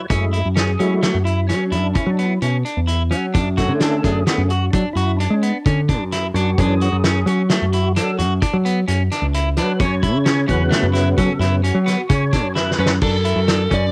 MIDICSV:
0, 0, Header, 1, 6, 480
1, 0, Start_track
1, 0, Key_signature, 3, "minor"
1, 0, Tempo, 461184
1, 106, Time_signature, 7, 2, 24, 8
1, 14486, End_track
2, 0, Start_track
2, 0, Title_t, "Lead electric guitar"
2, 0, Program_c, 0, 29
2, 13325, Note_on_c, 0, 71, 74
2, 13388, Note_off_c, 0, 71, 0
2, 13564, Note_on_c, 0, 69, 77
2, 14299, Note_off_c, 0, 69, 0
2, 14299, Note_on_c, 0, 74, 86
2, 14486, Note_off_c, 0, 74, 0
2, 14486, End_track
3, 0, Start_track
3, 0, Title_t, "Clean electric guitar"
3, 0, Program_c, 1, 27
3, 102, Note_on_c, 1, 61, 73
3, 251, Note_off_c, 1, 61, 0
3, 342, Note_on_c, 1, 64, 65
3, 491, Note_off_c, 1, 64, 0
3, 578, Note_on_c, 1, 61, 69
3, 729, Note_off_c, 1, 61, 0
3, 823, Note_on_c, 1, 61, 67
3, 973, Note_off_c, 1, 61, 0
3, 1065, Note_on_c, 1, 57, 83
3, 1214, Note_off_c, 1, 57, 0
3, 1302, Note_on_c, 1, 64, 64
3, 1453, Note_off_c, 1, 64, 0
3, 1550, Note_on_c, 1, 61, 67
3, 1699, Note_off_c, 1, 61, 0
3, 1789, Note_on_c, 1, 64, 70
3, 1938, Note_off_c, 1, 64, 0
3, 2030, Note_on_c, 1, 61, 62
3, 2179, Note_off_c, 1, 61, 0
3, 2277, Note_on_c, 1, 59, 64
3, 2424, Note_off_c, 1, 59, 0
3, 2521, Note_on_c, 1, 61, 68
3, 2668, Note_off_c, 1, 61, 0
3, 2758, Note_on_c, 1, 62, 61
3, 2906, Note_off_c, 1, 62, 0
3, 2992, Note_on_c, 1, 64, 67
3, 3142, Note_off_c, 1, 64, 0
3, 3237, Note_on_c, 1, 61, 71
3, 3385, Note_off_c, 1, 61, 0
3, 3475, Note_on_c, 1, 62, 75
3, 3624, Note_off_c, 1, 62, 0
3, 3719, Note_on_c, 1, 66, 72
3, 3867, Note_off_c, 1, 66, 0
3, 3965, Note_on_c, 1, 62, 72
3, 4112, Note_off_c, 1, 62, 0
3, 4213, Note_on_c, 1, 62, 70
3, 4357, Note_off_c, 1, 62, 0
3, 4449, Note_on_c, 1, 59, 79
3, 4594, Note_off_c, 1, 59, 0
3, 4692, Note_on_c, 1, 66, 63
3, 4837, Note_off_c, 1, 66, 0
3, 4937, Note_on_c, 1, 62, 74
3, 5080, Note_off_c, 1, 62, 0
3, 5171, Note_on_c, 1, 66, 73
3, 5316, Note_off_c, 1, 66, 0
3, 5414, Note_on_c, 1, 62, 60
3, 5558, Note_off_c, 1, 62, 0
3, 5650, Note_on_c, 1, 59, 61
3, 5795, Note_off_c, 1, 59, 0
3, 5891, Note_on_c, 1, 61, 65
3, 6035, Note_off_c, 1, 61, 0
3, 6135, Note_on_c, 1, 62, 70
3, 6278, Note_off_c, 1, 62, 0
3, 6374, Note_on_c, 1, 64, 78
3, 6518, Note_off_c, 1, 64, 0
3, 6619, Note_on_c, 1, 62, 80
3, 6761, Note_off_c, 1, 62, 0
3, 6870, Note_on_c, 1, 62, 88
3, 7009, Note_off_c, 1, 62, 0
3, 7097, Note_on_c, 1, 66, 72
3, 7240, Note_off_c, 1, 66, 0
3, 7342, Note_on_c, 1, 61, 74
3, 7483, Note_off_c, 1, 61, 0
3, 7573, Note_on_c, 1, 61, 72
3, 7716, Note_off_c, 1, 61, 0
3, 7809, Note_on_c, 1, 57, 81
3, 7954, Note_off_c, 1, 57, 0
3, 8054, Note_on_c, 1, 64, 69
3, 8197, Note_off_c, 1, 64, 0
3, 8289, Note_on_c, 1, 62, 75
3, 8433, Note_off_c, 1, 62, 0
3, 8521, Note_on_c, 1, 66, 73
3, 8667, Note_off_c, 1, 66, 0
3, 8761, Note_on_c, 1, 62, 74
3, 8907, Note_off_c, 1, 62, 0
3, 9004, Note_on_c, 1, 59, 73
3, 9149, Note_off_c, 1, 59, 0
3, 9238, Note_on_c, 1, 61, 70
3, 9385, Note_off_c, 1, 61, 0
3, 9488, Note_on_c, 1, 62, 71
3, 9632, Note_off_c, 1, 62, 0
3, 9727, Note_on_c, 1, 64, 72
3, 9871, Note_off_c, 1, 64, 0
3, 9968, Note_on_c, 1, 62, 80
3, 10112, Note_off_c, 1, 62, 0
3, 10203, Note_on_c, 1, 61, 79
3, 10348, Note_off_c, 1, 61, 0
3, 10439, Note_on_c, 1, 64, 77
3, 10585, Note_off_c, 1, 64, 0
3, 10673, Note_on_c, 1, 61, 77
3, 10821, Note_off_c, 1, 61, 0
3, 10905, Note_on_c, 1, 61, 78
3, 11055, Note_off_c, 1, 61, 0
3, 11143, Note_on_c, 1, 57, 91
3, 11294, Note_off_c, 1, 57, 0
3, 11381, Note_on_c, 1, 64, 78
3, 11532, Note_off_c, 1, 64, 0
3, 11634, Note_on_c, 1, 61, 78
3, 11781, Note_off_c, 1, 61, 0
3, 11872, Note_on_c, 1, 64, 77
3, 12020, Note_off_c, 1, 64, 0
3, 12113, Note_on_c, 1, 61, 69
3, 12260, Note_off_c, 1, 61, 0
3, 12346, Note_on_c, 1, 59, 69
3, 12495, Note_off_c, 1, 59, 0
3, 12587, Note_on_c, 1, 61, 70
3, 12736, Note_off_c, 1, 61, 0
3, 12831, Note_on_c, 1, 62, 73
3, 12978, Note_off_c, 1, 62, 0
3, 13067, Note_on_c, 1, 64, 77
3, 13215, Note_off_c, 1, 64, 0
3, 13309, Note_on_c, 1, 61, 75
3, 13457, Note_off_c, 1, 61, 0
3, 13551, Note_on_c, 1, 62, 76
3, 13698, Note_off_c, 1, 62, 0
3, 13788, Note_on_c, 1, 64, 73
3, 13935, Note_off_c, 1, 64, 0
3, 14028, Note_on_c, 1, 62, 80
3, 14175, Note_off_c, 1, 62, 0
3, 14266, Note_on_c, 1, 61, 69
3, 14413, Note_off_c, 1, 61, 0
3, 14486, End_track
4, 0, Start_track
4, 0, Title_t, "Tonewheel organ"
4, 0, Program_c, 2, 16
4, 103, Note_on_c, 2, 56, 41
4, 112, Note_on_c, 2, 57, 41
4, 116, Note_on_c, 2, 64, 50
4, 426, Note_off_c, 2, 56, 0
4, 431, Note_off_c, 2, 57, 0
4, 433, Note_off_c, 2, 64, 0
4, 593, Note_on_c, 2, 68, 102
4, 831, Note_on_c, 2, 66, 89
4, 834, Note_on_c, 2, 56, 47
4, 840, Note_off_c, 2, 68, 0
4, 843, Note_on_c, 2, 57, 40
4, 849, Note_on_c, 2, 64, 48
4, 1050, Note_off_c, 2, 56, 0
4, 1055, Note_off_c, 2, 57, 0
4, 1059, Note_off_c, 2, 64, 0
4, 1280, Note_off_c, 2, 66, 0
4, 1294, Note_on_c, 2, 64, 81
4, 1528, Note_off_c, 2, 64, 0
4, 1530, Note_on_c, 2, 61, 67
4, 1778, Note_on_c, 2, 62, 75
4, 1792, Note_off_c, 2, 61, 0
4, 2022, Note_on_c, 2, 64, 72
4, 2036, Note_off_c, 2, 62, 0
4, 2179, Note_off_c, 2, 64, 0
4, 2189, Note_on_c, 2, 62, 76
4, 2346, Note_on_c, 2, 64, 61
4, 2360, Note_off_c, 2, 62, 0
4, 2576, Note_off_c, 2, 64, 0
4, 3722, Note_on_c, 2, 50, 44
4, 3731, Note_on_c, 2, 57, 41
4, 3737, Note_on_c, 2, 61, 52
4, 3981, Note_on_c, 2, 69, 102
4, 4197, Note_off_c, 2, 69, 0
4, 4216, Note_on_c, 2, 68, 101
4, 4408, Note_off_c, 2, 50, 0
4, 4413, Note_off_c, 2, 57, 0
4, 4416, Note_off_c, 2, 61, 0
4, 4465, Note_on_c, 2, 50, 39
4, 4465, Note_on_c, 2, 57, 35
4, 4472, Note_on_c, 2, 61, 38
4, 4672, Note_off_c, 2, 50, 0
4, 4672, Note_off_c, 2, 57, 0
4, 4674, Note_on_c, 2, 66, 82
4, 4676, Note_off_c, 2, 61, 0
4, 4706, Note_off_c, 2, 68, 0
4, 4899, Note_on_c, 2, 62, 66
4, 4903, Note_off_c, 2, 66, 0
4, 5133, Note_on_c, 2, 64, 80
4, 5135, Note_off_c, 2, 62, 0
4, 5376, Note_on_c, 2, 62, 85
4, 5397, Note_off_c, 2, 64, 0
4, 5553, Note_on_c, 2, 61, 76
4, 5557, Note_off_c, 2, 62, 0
4, 5708, Note_off_c, 2, 61, 0
4, 5717, Note_on_c, 2, 62, 68
4, 5944, Note_off_c, 2, 62, 0
4, 6605, Note_on_c, 2, 66, 71
4, 6847, Note_on_c, 2, 52, 47
4, 6850, Note_on_c, 2, 68, 74
4, 6851, Note_on_c, 2, 54, 47
4, 6853, Note_off_c, 2, 66, 0
4, 6856, Note_on_c, 2, 61, 50
4, 7165, Note_off_c, 2, 52, 0
4, 7168, Note_off_c, 2, 54, 0
4, 7170, Note_off_c, 2, 61, 0
4, 7576, Note_on_c, 2, 66, 102
4, 7588, Note_off_c, 2, 68, 0
4, 8248, Note_off_c, 2, 66, 0
4, 8290, Note_on_c, 2, 69, 88
4, 8510, Note_off_c, 2, 69, 0
4, 9981, Note_on_c, 2, 71, 79
4, 10194, Note_off_c, 2, 71, 0
4, 10220, Note_on_c, 2, 73, 96
4, 10887, Note_off_c, 2, 73, 0
4, 10906, Note_on_c, 2, 49, 54
4, 10907, Note_on_c, 2, 54, 45
4, 10916, Note_on_c, 2, 59, 57
4, 10936, Note_on_c, 2, 71, 90
4, 11644, Note_on_c, 2, 69, 65
4, 11667, Note_off_c, 2, 71, 0
4, 11857, Note_off_c, 2, 49, 0
4, 11860, Note_off_c, 2, 54, 0
4, 11862, Note_off_c, 2, 59, 0
4, 11863, Note_off_c, 2, 69, 0
4, 11870, Note_on_c, 2, 49, 54
4, 11872, Note_on_c, 2, 54, 46
4, 11875, Note_on_c, 2, 59, 57
4, 12088, Note_off_c, 2, 49, 0
4, 12090, Note_off_c, 2, 54, 0
4, 12091, Note_off_c, 2, 59, 0
4, 12107, Note_on_c, 2, 66, 79
4, 12593, Note_on_c, 2, 73, 94
4, 12605, Note_off_c, 2, 66, 0
4, 13039, Note_off_c, 2, 73, 0
4, 13076, Note_on_c, 2, 71, 90
4, 13520, Note_off_c, 2, 71, 0
4, 14486, End_track
5, 0, Start_track
5, 0, Title_t, "Picked electric bass"
5, 0, Program_c, 3, 34
5, 107, Note_on_c, 3, 42, 89
5, 424, Note_off_c, 3, 42, 0
5, 471, Note_on_c, 3, 42, 69
5, 788, Note_off_c, 3, 42, 0
5, 830, Note_on_c, 3, 54, 68
5, 1148, Note_off_c, 3, 54, 0
5, 1190, Note_on_c, 3, 42, 79
5, 1556, Note_on_c, 3, 54, 76
5, 1572, Note_off_c, 3, 42, 0
5, 1786, Note_on_c, 3, 42, 81
5, 1802, Note_off_c, 3, 54, 0
5, 2002, Note_off_c, 3, 42, 0
5, 2149, Note_on_c, 3, 54, 84
5, 2470, Note_off_c, 3, 54, 0
5, 2517, Note_on_c, 3, 47, 76
5, 2730, Note_off_c, 3, 47, 0
5, 2882, Note_on_c, 3, 40, 74
5, 3234, Note_on_c, 3, 54, 79
5, 3249, Note_off_c, 3, 40, 0
5, 3482, Note_on_c, 3, 42, 85
5, 3498, Note_off_c, 3, 54, 0
5, 3837, Note_on_c, 3, 50, 74
5, 3852, Note_off_c, 3, 42, 0
5, 4156, Note_off_c, 3, 50, 0
5, 4206, Note_on_c, 3, 42, 70
5, 4416, Note_off_c, 3, 42, 0
5, 4557, Note_on_c, 3, 42, 77
5, 4876, Note_off_c, 3, 42, 0
5, 4927, Note_on_c, 3, 54, 77
5, 5032, Note_off_c, 3, 54, 0
5, 5156, Note_on_c, 3, 42, 82
5, 5476, Note_off_c, 3, 42, 0
5, 5520, Note_on_c, 3, 56, 89
5, 5733, Note_off_c, 3, 56, 0
5, 5889, Note_on_c, 3, 50, 83
5, 6241, Note_off_c, 3, 50, 0
5, 6241, Note_on_c, 3, 42, 77
5, 6558, Note_off_c, 3, 42, 0
5, 6601, Note_on_c, 3, 42, 85
5, 6813, Note_off_c, 3, 42, 0
5, 6847, Note_on_c, 3, 42, 84
5, 7161, Note_off_c, 3, 42, 0
5, 7204, Note_on_c, 3, 42, 76
5, 7520, Note_off_c, 3, 42, 0
5, 7556, Note_on_c, 3, 54, 84
5, 7875, Note_off_c, 3, 54, 0
5, 7929, Note_on_c, 3, 42, 81
5, 8291, Note_on_c, 3, 54, 71
5, 8307, Note_off_c, 3, 42, 0
5, 8522, Note_on_c, 3, 42, 88
5, 8537, Note_off_c, 3, 54, 0
5, 8732, Note_off_c, 3, 42, 0
5, 8883, Note_on_c, 3, 54, 86
5, 9197, Note_off_c, 3, 54, 0
5, 9243, Note_on_c, 3, 42, 82
5, 9452, Note_off_c, 3, 42, 0
5, 9593, Note_on_c, 3, 37, 89
5, 9959, Note_on_c, 3, 54, 84
5, 9975, Note_off_c, 3, 37, 0
5, 10203, Note_on_c, 3, 42, 90
5, 10218, Note_off_c, 3, 54, 0
5, 10560, Note_off_c, 3, 42, 0
5, 10560, Note_on_c, 3, 49, 78
5, 10874, Note_off_c, 3, 49, 0
5, 10918, Note_on_c, 3, 40, 84
5, 11128, Note_off_c, 3, 40, 0
5, 11269, Note_on_c, 3, 42, 86
5, 11588, Note_off_c, 3, 42, 0
5, 11631, Note_on_c, 3, 54, 74
5, 11739, Note_off_c, 3, 54, 0
5, 11858, Note_on_c, 3, 42, 82
5, 12181, Note_off_c, 3, 42, 0
5, 12226, Note_on_c, 3, 54, 94
5, 12440, Note_off_c, 3, 54, 0
5, 12592, Note_on_c, 3, 49, 92
5, 12945, Note_off_c, 3, 49, 0
5, 12945, Note_on_c, 3, 42, 87
5, 13264, Note_off_c, 3, 42, 0
5, 13307, Note_on_c, 3, 42, 91
5, 13520, Note_off_c, 3, 42, 0
5, 13551, Note_on_c, 3, 42, 88
5, 13867, Note_off_c, 3, 42, 0
5, 13903, Note_on_c, 3, 42, 81
5, 14222, Note_off_c, 3, 42, 0
5, 14272, Note_on_c, 3, 42, 85
5, 14486, Note_off_c, 3, 42, 0
5, 14486, End_track
6, 0, Start_track
6, 0, Title_t, "Drums"
6, 103, Note_on_c, 9, 42, 83
6, 105, Note_on_c, 9, 36, 90
6, 207, Note_off_c, 9, 42, 0
6, 210, Note_off_c, 9, 36, 0
6, 348, Note_on_c, 9, 42, 55
6, 452, Note_off_c, 9, 42, 0
6, 588, Note_on_c, 9, 38, 86
6, 588, Note_on_c, 9, 42, 74
6, 692, Note_off_c, 9, 38, 0
6, 692, Note_off_c, 9, 42, 0
6, 831, Note_on_c, 9, 42, 52
6, 935, Note_off_c, 9, 42, 0
6, 1069, Note_on_c, 9, 38, 99
6, 1069, Note_on_c, 9, 42, 68
6, 1173, Note_off_c, 9, 38, 0
6, 1173, Note_off_c, 9, 42, 0
6, 1314, Note_on_c, 9, 42, 55
6, 1418, Note_off_c, 9, 42, 0
6, 1552, Note_on_c, 9, 38, 26
6, 1552, Note_on_c, 9, 42, 63
6, 1657, Note_off_c, 9, 38, 0
6, 1657, Note_off_c, 9, 42, 0
6, 1791, Note_on_c, 9, 42, 53
6, 1895, Note_off_c, 9, 42, 0
6, 2028, Note_on_c, 9, 42, 67
6, 2035, Note_on_c, 9, 36, 88
6, 2132, Note_off_c, 9, 42, 0
6, 2139, Note_off_c, 9, 36, 0
6, 2275, Note_on_c, 9, 42, 46
6, 2379, Note_off_c, 9, 42, 0
6, 2515, Note_on_c, 9, 42, 63
6, 2619, Note_off_c, 9, 42, 0
6, 2762, Note_on_c, 9, 42, 51
6, 2866, Note_off_c, 9, 42, 0
6, 2998, Note_on_c, 9, 42, 65
6, 3103, Note_off_c, 9, 42, 0
6, 3244, Note_on_c, 9, 42, 53
6, 3348, Note_off_c, 9, 42, 0
6, 3482, Note_on_c, 9, 42, 72
6, 3484, Note_on_c, 9, 36, 92
6, 3586, Note_off_c, 9, 42, 0
6, 3588, Note_off_c, 9, 36, 0
6, 3723, Note_on_c, 9, 38, 30
6, 3723, Note_on_c, 9, 42, 54
6, 3725, Note_on_c, 9, 36, 59
6, 3827, Note_off_c, 9, 38, 0
6, 3827, Note_off_c, 9, 42, 0
6, 3829, Note_off_c, 9, 36, 0
6, 3959, Note_on_c, 9, 38, 93
6, 3959, Note_on_c, 9, 42, 67
6, 4063, Note_off_c, 9, 38, 0
6, 4063, Note_off_c, 9, 42, 0
6, 4205, Note_on_c, 9, 38, 27
6, 4205, Note_on_c, 9, 42, 49
6, 4206, Note_on_c, 9, 36, 66
6, 4309, Note_off_c, 9, 38, 0
6, 4309, Note_off_c, 9, 42, 0
6, 4310, Note_off_c, 9, 36, 0
6, 4442, Note_on_c, 9, 38, 96
6, 4442, Note_on_c, 9, 42, 77
6, 4546, Note_off_c, 9, 38, 0
6, 4546, Note_off_c, 9, 42, 0
6, 4681, Note_on_c, 9, 42, 53
6, 4785, Note_off_c, 9, 42, 0
6, 4922, Note_on_c, 9, 42, 72
6, 4926, Note_on_c, 9, 36, 91
6, 5026, Note_off_c, 9, 42, 0
6, 5030, Note_off_c, 9, 36, 0
6, 5165, Note_on_c, 9, 42, 59
6, 5269, Note_off_c, 9, 42, 0
6, 5412, Note_on_c, 9, 42, 62
6, 5516, Note_off_c, 9, 42, 0
6, 5647, Note_on_c, 9, 42, 57
6, 5751, Note_off_c, 9, 42, 0
6, 5887, Note_on_c, 9, 42, 74
6, 5888, Note_on_c, 9, 36, 92
6, 5991, Note_off_c, 9, 42, 0
6, 5992, Note_off_c, 9, 36, 0
6, 6128, Note_on_c, 9, 42, 54
6, 6129, Note_on_c, 9, 36, 71
6, 6232, Note_off_c, 9, 42, 0
6, 6233, Note_off_c, 9, 36, 0
6, 6369, Note_on_c, 9, 38, 31
6, 6369, Note_on_c, 9, 42, 65
6, 6474, Note_off_c, 9, 38, 0
6, 6474, Note_off_c, 9, 42, 0
6, 6613, Note_on_c, 9, 42, 57
6, 6717, Note_off_c, 9, 42, 0
6, 6850, Note_on_c, 9, 36, 93
6, 6850, Note_on_c, 9, 42, 68
6, 6954, Note_off_c, 9, 36, 0
6, 6954, Note_off_c, 9, 42, 0
6, 7088, Note_on_c, 9, 42, 53
6, 7192, Note_off_c, 9, 42, 0
6, 7326, Note_on_c, 9, 38, 102
6, 7326, Note_on_c, 9, 42, 73
6, 7430, Note_off_c, 9, 38, 0
6, 7430, Note_off_c, 9, 42, 0
6, 7565, Note_on_c, 9, 42, 51
6, 7669, Note_off_c, 9, 42, 0
6, 7802, Note_on_c, 9, 38, 101
6, 7802, Note_on_c, 9, 42, 65
6, 7906, Note_off_c, 9, 38, 0
6, 7906, Note_off_c, 9, 42, 0
6, 8043, Note_on_c, 9, 42, 53
6, 8147, Note_off_c, 9, 42, 0
6, 8284, Note_on_c, 9, 38, 27
6, 8284, Note_on_c, 9, 42, 78
6, 8388, Note_off_c, 9, 38, 0
6, 8388, Note_off_c, 9, 42, 0
6, 8527, Note_on_c, 9, 42, 62
6, 8631, Note_off_c, 9, 42, 0
6, 8765, Note_on_c, 9, 36, 92
6, 8765, Note_on_c, 9, 42, 75
6, 8869, Note_off_c, 9, 36, 0
6, 8869, Note_off_c, 9, 42, 0
6, 9008, Note_on_c, 9, 42, 57
6, 9112, Note_off_c, 9, 42, 0
6, 9243, Note_on_c, 9, 42, 86
6, 9347, Note_off_c, 9, 42, 0
6, 9485, Note_on_c, 9, 38, 31
6, 9485, Note_on_c, 9, 42, 58
6, 9589, Note_off_c, 9, 38, 0
6, 9589, Note_off_c, 9, 42, 0
6, 9723, Note_on_c, 9, 42, 69
6, 9827, Note_off_c, 9, 42, 0
6, 9958, Note_on_c, 9, 38, 32
6, 9958, Note_on_c, 9, 42, 58
6, 10062, Note_off_c, 9, 38, 0
6, 10062, Note_off_c, 9, 42, 0
6, 10198, Note_on_c, 9, 42, 77
6, 10199, Note_on_c, 9, 36, 111
6, 10302, Note_off_c, 9, 42, 0
6, 10303, Note_off_c, 9, 36, 0
6, 10439, Note_on_c, 9, 36, 68
6, 10442, Note_on_c, 9, 42, 53
6, 10543, Note_off_c, 9, 36, 0
6, 10546, Note_off_c, 9, 42, 0
6, 10677, Note_on_c, 9, 38, 99
6, 10677, Note_on_c, 9, 42, 75
6, 10782, Note_off_c, 9, 38, 0
6, 10782, Note_off_c, 9, 42, 0
6, 10917, Note_on_c, 9, 36, 63
6, 10917, Note_on_c, 9, 42, 52
6, 11021, Note_off_c, 9, 36, 0
6, 11021, Note_off_c, 9, 42, 0
6, 11159, Note_on_c, 9, 38, 87
6, 11159, Note_on_c, 9, 42, 66
6, 11263, Note_off_c, 9, 38, 0
6, 11263, Note_off_c, 9, 42, 0
6, 11396, Note_on_c, 9, 38, 33
6, 11396, Note_on_c, 9, 42, 52
6, 11501, Note_off_c, 9, 38, 0
6, 11501, Note_off_c, 9, 42, 0
6, 11632, Note_on_c, 9, 42, 69
6, 11635, Note_on_c, 9, 36, 92
6, 11736, Note_off_c, 9, 42, 0
6, 11739, Note_off_c, 9, 36, 0
6, 11879, Note_on_c, 9, 38, 31
6, 11879, Note_on_c, 9, 42, 58
6, 11983, Note_off_c, 9, 38, 0
6, 11983, Note_off_c, 9, 42, 0
6, 12116, Note_on_c, 9, 42, 68
6, 12221, Note_off_c, 9, 42, 0
6, 12359, Note_on_c, 9, 38, 33
6, 12359, Note_on_c, 9, 42, 55
6, 12463, Note_off_c, 9, 38, 0
6, 12463, Note_off_c, 9, 42, 0
6, 12589, Note_on_c, 9, 42, 79
6, 12593, Note_on_c, 9, 36, 93
6, 12693, Note_off_c, 9, 42, 0
6, 12697, Note_off_c, 9, 36, 0
6, 12832, Note_on_c, 9, 38, 34
6, 12832, Note_on_c, 9, 42, 57
6, 12833, Note_on_c, 9, 36, 74
6, 12936, Note_off_c, 9, 38, 0
6, 12936, Note_off_c, 9, 42, 0
6, 12937, Note_off_c, 9, 36, 0
6, 13071, Note_on_c, 9, 38, 54
6, 13175, Note_off_c, 9, 38, 0
6, 13230, Note_on_c, 9, 38, 55
6, 13334, Note_off_c, 9, 38, 0
6, 13386, Note_on_c, 9, 38, 92
6, 13491, Note_off_c, 9, 38, 0
6, 13545, Note_on_c, 9, 49, 96
6, 13550, Note_on_c, 9, 36, 104
6, 13649, Note_off_c, 9, 49, 0
6, 13654, Note_off_c, 9, 36, 0
6, 13789, Note_on_c, 9, 42, 55
6, 13893, Note_off_c, 9, 42, 0
6, 14031, Note_on_c, 9, 38, 100
6, 14031, Note_on_c, 9, 42, 74
6, 14135, Note_off_c, 9, 38, 0
6, 14135, Note_off_c, 9, 42, 0
6, 14271, Note_on_c, 9, 36, 65
6, 14272, Note_on_c, 9, 42, 52
6, 14375, Note_off_c, 9, 36, 0
6, 14376, Note_off_c, 9, 42, 0
6, 14486, End_track
0, 0, End_of_file